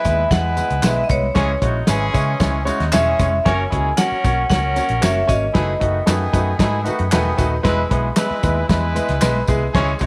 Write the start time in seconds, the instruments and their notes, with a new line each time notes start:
Already playing: horn section G#3 E4 B4, vibraphone E5
0.05 picked electric bass D#2, grand piano G#3 B3 E4 B4, kick, closed hi-hat, tambourine, muted conga
0.31 picked electric bass E2, grand piano G#3 B3 E4 B4, horn section G#3 E4 B4, vibraphone F#5, kick, snare, closed hi-hat, tambourine, muted conga
0.57 grand piano G#3 B3 E4 B4, closed hi-hat, tambourine, muted conga, low conga
0.70 picked electric bass C#2, closed hi-hat
0.83 picked electric bass B1, grand piano G#3 B3 E4 B4, vibraphone E5, snare, clap, closed hi-hat, tambourine, high conga
0.98 high conga
1.04 vibraphone D#5
1.09 picked electric bass C2, grand piano G#3 B3 E4 B4, vibraphone C#5, kick, closed hi-hat, tambourine
1.23 high conga
1.35 picked electric bass C#2, horn section E3 C#4 G#4, grand piano G#3 C#4 E4 C#5, kick, snare, closed hi-hat, tambourine, muted conga
1.62 picked electric bass A#1, horn section F#3 D#4 F#4, grand piano G#3 C#4 E4 C#5, kick, closed hi-hat
1.87 picked electric bass G#1, horn section E3 C#4 G#4, grand piano G#3 C#4 E4 B4, snare, clap, closed hi-hat, tambourine, high conga
2.13 picked electric bass C#3, grand piano G#3 C#4 E4 C#5, kick, closed hi-hat, tambourine, muted conga
2.40 picked electric bass C#2, horn section E3 C#4 G#4, grand piano G#3 C#4 E4 C#5, kick, snare, closed hi-hat, tambourine, muted conga
2.65 horn section F#3 D#4 F#4, grand piano G#3 C#4 E4 C#5, closed hi-hat, tambourine, muted conga, low conga
2.80 picked electric bass D#2, snare, closed hi-hat
2.92 picked electric bass E1, horn section E3 C#4 G#4, grand piano G#3 C#4 E4 C#5, vibraphone E5, snare, clap, closed hi-hat, tambourine, high conga
3.06 high conga
3.19 picked electric bass F1, grand piano G#3 C#4 E4 C#5, kick, closed hi-hat, tambourine
3.33 high conga
3.45 picked electric bass F#1, horn section F#3 C#4 A#4, grand piano A#3 C#4 F#4 C#5, vibraphone G#5, kick, snare, closed hi-hat, muted conga
3.70 picked electric bass C#2, horn section G#3 E4 G#4, grand piano A#3 C#4 F#4 C#5, kick, closed hi-hat
3.97 horn section F#3 C#4 A#4, grand piano A#3 C#4 F#4 C#5, vibraphone F#5, snare, clap, closed hi-hat, tambourine, high conga
4.12 muted picked electric bass stroke
4.24 picked electric bass B1, grand piano A#3 C#4 F#4 C#5, kick, closed hi-hat, tambourine, muted conga
4.49 picked electric bass C#2, horn section F#3 C#4 A#4, grand piano A#3 C#4 F#4 C#5, vibraphone F#5, kick, snare, closed hi-hat, tambourine, muted conga
4.76 grand piano A#3 C#4 F#4 C#5, closed hi-hat, tambourine, muted conga, low conga
4.89 picked electric bass A#1, closed hi-hat
5.01 picked electric bass F#1, grand piano A#3 C#4 F#4 C#5, vibraphone E5, snare, clap, closed hi-hat, tambourine, high conga
5.16 high conga
5.27 picked electric bass G#1, grand piano A#3 C#4 F#4 C#5, vibraphone D#5, kick, closed hi-hat, tambourine
5.43 high conga
5.53 picked electric bass F#1, horn section G#3 E4 G#4, grand piano A3 D#4 F#4 B4, kick, snare, closed hi-hat
5.79 picked electric bass F#1, horn section D#3 B3 F#4, grand piano A3 D#4 F#4 B4, kick, closed hi-hat
6.06 picked electric bass F#2, horn section D#3 B3 G#4, grand piano A3 D#4 F#4 B4, snare, clap, closed hi-hat, tambourine, high conga
6.33 picked electric bass F#2, grand piano A3 D#4 F#4 B4, kick, closed hi-hat, tambourine, muted conga
6.59 picked electric bass G#2, horn section G#3 E4 G#4, grand piano A3 D#4 F#4 B4, kick, snare, closed hi-hat, tambourine, muted conga
6.84 horn section D#3 B3 F#4, grand piano A3 D#4 F#4 B4, closed hi-hat, tambourine, muted conga, low conga
6.99 picked electric bass F#2, closed hi-hat
7.10 picked electric bass E1, horn section D#3 B3 G#4, grand piano A3 D#4 F#4 B4, snare, clap, closed hi-hat, tambourine, high conga
7.25 high conga
7.37 picked electric bass D#1, grand piano A3 D#4 F#4 B4, kick, closed hi-hat, tambourine
7.63 picked electric bass E1, grand piano G#3 B3 E4 B4, horn section G#3 E4 B4, kick, snare, closed hi-hat, tambourine
7.90 picked electric bass B1, horn section E3 B3 G#4, grand piano G#3 B3 E4 B4, kick, closed hi-hat
8.16 grand piano G#3 B3 E4 B4, horn section G#3 E4 B4, snare, clap, closed hi-hat, tambourine, high conga
8.31 muted picked electric bass stroke
8.43 picked electric bass D#2, grand piano G#3 B3 E4 B4, kick, closed hi-hat, tambourine, muted conga
8.69 picked electric bass E2, horn section G#3 E4 B4, grand piano G#3 B3 E4 B4, kick, snare, closed hi-hat, tambourine, muted conga
8.95 grand piano G#3 B3 E4 B4, closed hi-hat, tambourine, muted conga, low conga
9.08 picked electric bass C#2, snare, closed hi-hat
9.21 picked electric bass B1, grand piano G#3 B3 E4 B4, snare, clap, closed hi-hat, tambourine, high conga
9.35 high conga
9.47 picked electric bass C2, grand piano G#3 B3 E4 G#4, kick, closed hi-hat, tambourine
9.62 high conga
9.73 picked electric bass C#2, horn section E3 C#4 G#4, grand piano G#3 C#4 E4 C#5, kick, snare, closed hi-hat
9.99 picked electric bass A#1, horn section F#3 D#4 F#4, grand piano G#3 C#4 E4 C#5, kick, closed hi-hat, tambourine